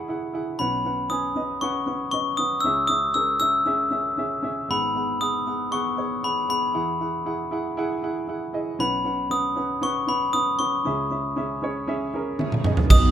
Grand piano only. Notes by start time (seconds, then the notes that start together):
Already playing: E2 E3 E4 G#4 F#5
0.08 E4 G#4 F#5
0.33 E4 G#4 F#5
0.60 B1 B2 C#4 B4 F#5
0.85 C#4 B4 F#5
1.10 C#4 B4 G#5
1.35 C#4 B4 D#5
1.62 C#4 B4 F#5
1.87 C#4 B4 F#5
2.13 C#4 B4 D#5
2.38 C#4 B4 F#5
2.64 C#2 C#3 C#4 G#4 E5
2.89 C#4 G#4 E5
3.15 C#4 G#4 A#4
3.40 C#4 G#4 E5
3.66 C#4 G#4 E5
3.91 C#4 G#4 E5
4.17 C#4 G#4 E5
4.43 C#4 G#4 E5
4.69 G#1 G#2 B3 G#4 F#5
4.95 B3 G#4 F#5
5.20 B3 G#4 F#5
5.46 B3 G#4 F#5
5.71 B3 G#4 F#5
5.97 B3 G#4 C#5
6.23 B3 G#4 F#5
6.49 B3 G#4 F#5
6.74 E2 E3 E4 G#4 F#5
7.00 E4 G#4 F#5
7.25 E4 G#4 F#5
7.51 E4 G#4 F#5
7.77 E4 G#4 F#5
8.03 E4 G#4 F#5
8.28 E4 G#4 F#5
8.53 E4 G#4 D#5
8.79 B1 B2 C#4 B4 F#5
9.04 C#4 B4 F#5
9.30 C#4 B4 F#5
9.56 C#4 B4 F#5
9.81 C#4 B4 F#5
10.07 C#4 B4 F#5
10.34 C#4 B4 F#5
10.59 C#4 B4 F#5
10.85 C#2 C#3 C#4 G#4 E5
11.11 C#4 G#4 E5
11.36 C#4 G#4 E5
11.62 C#4 G#4 C#5
11.88 C#4 G#4 E5
12.14 C#4 G#4 A#4
12.39 C#4 G#4 E5
12.65 C#4 G#4 D#5
12.90 B2 B3 F#4 D#5